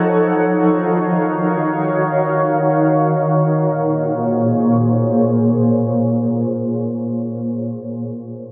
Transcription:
0.00 0.19 F3 medium
0.00 3.57 D#4 medium
0.00 0.19 A4 medium
0.00 0.19 C#5 medium
0.00 0.19 F#5 medium
0.23 3.57 D#3 medium
0.23 3.57 F#4 medium
0.23 3.57 C#5 medium
0.23 3.57 F5 medium
3.61 7.14 A#2 medium
3.61 7.14 A#3 medium
3.61 7.14 G#4 medium
3.61 7.14 C5 medium
3.61 7.14 C#5 medium

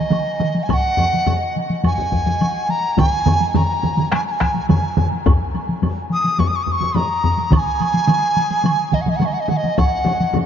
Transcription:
0.00 0.65 D#5 medium
0.10 taiko mid loud
0.10 taiko high medium
0.10 high woodblock soft
0.40 taiko mid loud
0.40 taiko high soft
0.55 taiko high medium
0.63 0.70 G#5 medium
0.69 0.75 G#5 loud
0.69 taiko loud
0.69 taiko high medium
0.69 high woodblock medium
0.74 1.55 F#5 loud
0.97 taiko low-mid loud
0.97 taiko high soft
0.97 high woodblock soft
1.13 taiko high medium
1.26 taiko low-mid loud
1.26 taiko high medium
1.26 high woodblock soft
1.56 taiko high soft
1.70 taiko high medium
1.84 2.72 G#5 loud
1.84 taiko low-mid medium
1.84 taiko high medium
1.84 high woodblock soft
1.98 taiko low-mid medium
2.12 taiko medium
2.12 taiko low-mid medium
2.12 taiko high medium
2.26 taiko low-mid medium
2.26 taiko high medium
2.41 taiko high medium
2.41 high woodblock soft
2.69 3.01 A#5 loud
2.69 taiko high medium
2.97 3.57 G#5 loud
2.97 taiko loud
2.97 taiko low-mid loud
2.97 taiko mid loud
2.97 taiko high medium
2.97 high woodblock medium
3.26 taiko low-mid loud
3.26 taiko mid loud
3.26 taiko high medium
3.26 high woodblock soft
3.40 taiko high medium
3.54 4.12 A#5 medium
3.54 taiko low-mid loud
3.54 taiko mid loud
3.54 taiko high medium
3.54 high woodblock soft
3.83 taiko low-mid medium
3.83 taiko mid medium
3.83 taiko high soft
3.97 taiko low-mid medium
3.97 taiko mid medium
3.97 taiko high medium
4.12 4.26 G#5 medium
4.12 taiko rim medium
4.12 taiko high medium
4.12 high woodblock soft
4.27 4.32 A#5 medium
4.31 4.66 G#5 medium
4.40 taiko rim medium
4.40 taiko medium
4.40 taiko high soft
4.54 taiko high medium
4.69 5.08 G#5 medium
4.69 taiko low-mid loud
4.69 taiko mid loud
4.69 taiko high medium
4.69 high woodblock soft
4.97 taiko low-mid medium
4.97 taiko mid loud
4.97 taiko high soft
5.12 taiko high soft
5.26 taiko loud
5.26 taiko low-mid loud
5.26 taiko high medium
5.26 high woodblock medium
5.54 taiko high medium
5.54 high woodblock soft
5.69 taiko high medium
5.82 taiko low-mid medium
5.82 taiko high medium
5.82 high woodblock soft
6.10 6.41 D#6 loud
6.10 taiko high medium
6.24 taiko high medium
6.39 6.49 C#6 medium
6.39 taiko low-mid loud
6.39 taiko high medium
6.39 high woodblock soft
6.48 6.57 D#6 medium
6.56 6.65 C#6 medium
6.63 6.73 D#6 medium
6.63 taiko high medium
6.67 taiko low-mid medium
6.72 6.98 C#6 medium
6.81 taiko low-mid medium
6.81 taiko high medium
6.95 7.53 A#5 medium
6.95 taiko low-mid loud
6.95 taiko high medium
6.95 high woodblock soft
7.24 taiko low-mid medium
7.24 taiko high medium
7.38 taiko high medium
7.51 7.58 A#5 medium
7.51 taiko loud
7.51 taiko mid loud
7.51 taiko high medium
7.51 high woodblock medium
7.57 8.95 G#5 loud
7.80 taiko high medium
7.80 high woodblock soft
7.94 taiko high medium
8.07 taiko mid loud
8.07 taiko high medium
8.07 high woodblock soft
8.37 taiko high medium
8.51 taiko high medium
8.64 taiko mid loud
8.64 taiko high medium
8.64 high woodblock medium
8.92 9.03 D#5 medium
8.92 taiko medium
8.92 taiko mid medium
8.92 taiko high medium
9.01 9.11 F#5 medium
9.06 9.18 D#5 medium
9.06 taiko mid medium
9.06 taiko high medium
9.16 9.27 F#5 medium
9.16 taiko mid medium
9.21 taiko high medium
9.21 high woodblock soft
9.26 9.34 D#5 medium
9.33 9.42 F#5 medium
9.40 9.50 D#5 medium
9.48 9.58 F#5 medium
9.48 taiko mid loud
9.48 taiko high soft
9.57 9.80 D#5 medium
9.64 taiko high medium
9.78 10.37 F#5 medium
9.78 taiko medium
9.78 taiko high medium
9.78 high woodblock medium
10.05 taiko low-mid loud
10.05 taiko high medium
10.05 high woodblock soft
10.20 taiko high medium
10.33 taiko low-mid loud
10.33 taiko high medium
10.33 high woodblock soft

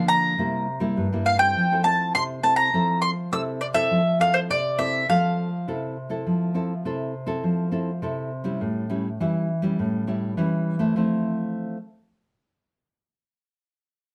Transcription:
0.00 0.35 D3 medium
0.00 0.34 F3 medium
0.00 0.35 A#3 medium
0.00 0.35 D4 medium
0.08 1.22 A#5 loud
0.38 0.94 C3 medium
0.38 0.66 G3 medium
0.38 0.66 A#3 medium
0.38 0.66 E4 medium
0.80 1.06 G3 medium
0.80 1.06 A#3 medium
0.80 1.06 E4 medium
0.97 1.53 G2 medium
1.13 1.37 G3 medium
1.13 1.37 A#3 medium
1.13 1.37 E4 medium
1.26 1.39 F5 medium
1.39 1.70 C4 medium
1.39 1.71 E4 medium
1.39 1.71 A4 medium
1.39 1.84 G5 loud
1.56 2.12 F3 medium
1.72 1.81 C4 medium
1.72 1.81 E4 medium
1.72 1.82 A4 medium
1.84 2.39 C4 medium
1.84 2.39 E4 soft
1.84 2.40 A4 medium
1.84 2.12 A5 medium
2.15 2.71 C3 medium
2.15 2.23 C6 loud
2.43 2.68 C4 medium
2.43 2.69 E4 medium
2.43 2.69 A4 medium
2.43 2.56 A5 medium
2.56 2.99 A#5 loud
2.73 3.30 F3 medium
2.73 3.12 C4 medium
2.73 3.12 E4 soft
2.73 3.12 A4 medium
3.02 3.10 C6 medium
3.32 3.88 C3 medium
3.32 3.60 C4 soft
3.32 3.60 E4 medium
3.32 3.60 A4 medium
3.32 3.41 E6 medium
3.61 3.66 D5 medium
3.74 4.00 C4 medium
3.74 4.00 E4 medium
3.74 4.00 A4 medium
3.74 4.21 E5 loud
3.91 4.47 F3 medium
4.19 4.58 C4 medium
4.19 4.58 E4 soft
4.19 4.58 A4 medium
4.19 4.34 F5 medium
4.34 4.39 C5 medium
4.50 5.06 C3 medium
4.50 4.78 D5 medium
4.78 5.04 C4 medium
4.78 5.04 E4 medium
4.78 5.04 A4 medium
4.78 5.06 E5 medium
5.09 5.65 F3 medium
5.09 5.47 C4 soft
5.09 5.47 A4 medium
5.09 5.93 F5 medium
5.68 6.24 C3 medium
5.68 5.95 C4 medium
5.68 5.95 E4 medium
5.68 5.96 A4 medium
6.09 6.50 C4 medium
6.09 6.50 E4 medium
6.09 6.50 A4 medium
6.27 6.82 F3 medium
6.54 6.72 C4 medium
6.54 6.73 E4 medium
6.54 6.73 A4 medium
6.85 7.41 C3 medium
6.85 7.13 C4 medium
6.85 7.13 E4 medium
6.85 7.13 A4 medium
7.26 7.67 C4 medium
7.26 7.67 E4 medium
7.26 7.68 A4 medium
7.44 8.00 F3 medium
7.71 7.90 C4 medium
7.71 7.90 E4 medium
7.71 7.90 A4 medium
8.02 8.58 C3 medium
8.02 8.30 C4 soft
8.02 8.30 E4 medium
8.02 8.30 A4 medium
8.44 8.85 G3 medium
8.44 8.85 C#4 medium
8.44 8.85 E4 medium
8.61 9.17 A2 medium
8.90 9.07 G3 medium
8.90 9.08 C#4 soft
8.90 9.08 E4 medium
9.20 9.76 E3 medium
9.20 9.48 G3 medium
9.20 9.48 C#4 medium
9.20 9.48 E4 medium
9.62 10.03 G3 medium
9.62 10.03 C#4 medium
9.62 10.03 E4 medium
9.79 10.35 A2 medium
10.07 10.32 G3 medium
10.07 10.33 C#4 soft
10.07 10.33 E4 medium
10.37 10.93 E3 medium
10.37 10.77 G3 medium
10.37 10.77 C#4 medium
10.37 10.77 E4 medium
10.79 10.95 A3 medium
10.79 10.96 C4 medium
10.79 10.97 E4 medium
10.96 11.76 F3 medium
10.96 11.76 A3 medium
10.96 11.76 C4 medium
10.96 11.76 E4 medium

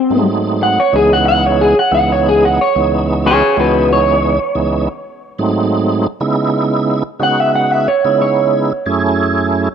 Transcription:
0.00 0.26 C4 medium
0.10 0.78 G#2 medium
0.10 0.78 F#3 medium
0.10 0.78 A3 medium
0.10 0.79 C4 medium
0.10 0.79 D#4 medium
0.63 0.78 F#5 medium
0.80 0.94 C#5 loud
0.92 1.75 C#2 medium
0.92 1.75 E3 medium
0.92 1.75 G#3 medium
0.92 1.75 B3 medium
0.92 1.75 D#4 medium
0.92 1.11 G#4 medium
1.13 1.27 F#5 medium
1.28 1.44 F#5 loud
1.46 1.60 C#5 medium
1.61 1.77 G#4 medium
1.79 1.93 F#5 medium
1.91 2.59 C#2 medium
1.91 2.59 E3 medium
1.91 2.60 G#3 medium
1.91 2.59 B3 medium
1.91 2.60 D#4 medium
1.91 2.10 F#5 loud
2.12 2.26 C#5 medium
2.29 2.43 G#4 loud
2.45 2.59 F#5 medium
2.61 2.92 C#5 loud
2.75 3.43 C#2 medium
2.75 3.43 E3 medium
2.75 3.43 G#3 medium
2.75 3.43 B3 medium
2.75 3.43 D#4 medium
3.26 3.58 G#4 medium
3.26 3.57 C#5 medium
3.57 4.39 C#2 medium
3.57 4.39 E3 medium
3.57 4.39 G#3 medium
3.57 4.39 B3 medium
3.57 4.40 D#4 medium
3.57 3.89 F#4 medium
3.57 3.91 B4 medium
3.93 4.88 C#5 loud
4.55 4.88 C#2 medium
4.55 4.89 E3 medium
4.55 4.89 G#3 medium
4.55 4.89 B3 medium
4.55 4.89 D#4 medium
5.38 6.07 G#2 loud
5.38 6.07 F#3 medium
5.38 6.07 A3 medium
5.38 6.07 C4 medium
5.38 6.07 D#4 loud
6.20 7.03 C#3 medium
6.20 7.03 G#3 medium
6.20 7.03 B3 medium
6.20 7.03 D#4 medium
6.20 7.03 E4 medium
7.19 7.88 C#3 medium
7.19 7.88 G#3 medium
7.19 7.88 B3 medium
7.19 7.88 D#4 medium
7.19 7.88 F#4 medium
7.19 7.40 F#5 medium
7.40 7.54 E5 medium
7.55 7.72 F#5 medium
7.72 7.87 E5 medium
7.88 8.20 C#5 medium
8.04 8.72 C#3 medium
8.04 8.72 G#3 medium
8.04 8.72 B3 medium
8.04 8.72 D#4 medium
8.04 8.73 E4 medium
8.22 8.53 C#5 medium
8.86 9.69 F#2 medium
8.86 9.68 A3 medium
8.86 9.69 C#4 medium
8.86 9.69 E4 medium
8.86 9.69 G#4 loud

